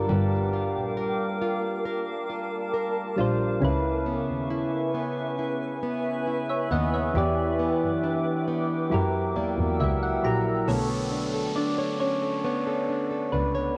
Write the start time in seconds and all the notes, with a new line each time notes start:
Already playing: G3 D4 F4 A#4 F5 G5 D6
0.09 G1 G3
0.53 F4
0.76 A#1
0.97 A#4
1.41 F4 A5
1.85 A#4
2.30 F4
2.74 A#4
3.16 A#1 G3 D4 F4
3.21 C5
3.60 C#2 C#3 C#4 E4 B4 E5 G#5 C#6
3.64 B4
4.06 B3
4.29 D#2
4.50 E4
4.94 B3
5.39 E4 B5
5.83 B3
6.27 E4
6.49 C#5 E5
6.71 D#2 B3 D#5 F#5
6.94 C#5 E5
7.14 E2 E3 E4 G4 G5 D6
7.18 D5
7.59 B3
7.81 F#2
8.04 D4
8.48 B3
8.90 F#2 F#3 E4 G4 A#4 F#5 E6
8.94 A#4
9.36 E2 A#3 D5
9.58 E2
9.80 C#2 E4 E5
10.03 F#5
10.23 A#1 F#3 A#3 E4 G4 A#5
10.27 A#4
10.68 B1 D3 A3 B3 A4 C#5, downlifter
10.90 A4
11.12 D4
11.34 A4
11.56 D4 D5
11.78 C#5
12.00 C#4 D4 C#5
12.22 A4
12.44 B3 C#5
12.67 A4
12.89 D4
13.11 A4
13.32 C#2 B3 D4 B4
13.55 C#5